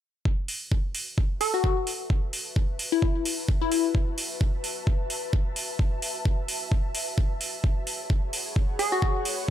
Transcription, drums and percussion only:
0.25 kick
0.48 open hi-hat
0.72 kick
0.95 open hi-hat
1.18 kick
1.41 open hi-hat
1.64 kick
1.87 open hi-hat
2.10 kick
2.33 open hi-hat
2.56 kick
2.79 open hi-hat
3.02 kick
3.25 open hi-hat
3.49 kick
3.72 open hi-hat
3.95 kick
4.18 open hi-hat
4.41 kick
4.64 open hi-hat
4.87 kick
5.10 open hi-hat
5.33 kick
5.56 open hi-hat
5.79 kick
6.02 open hi-hat
6.25 kick
6.48 open hi-hat
6.72 kick
6.95 open hi-hat
7.18 kick
7.41 open hi-hat
7.64 kick
7.87 open hi-hat
8.10 kick
8.33 open hi-hat
8.56 kick
8.79 open hi-hat
9.02 kick
9.25 open hi-hat

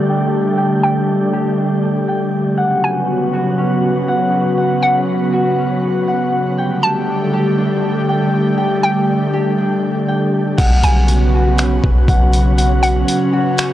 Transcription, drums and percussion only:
10.58 kick, closed hi-hat, crash
10.83 closed hi-hat
11.08 closed hi-hat
11.58 finger snap, closed hi-hat
11.84 kick
12.08 kick, closed hi-hat
12.33 closed hi-hat
12.58 closed hi-hat
12.83 closed hi-hat
13.08 closed hi-hat
13.58 finger snap, closed hi-hat

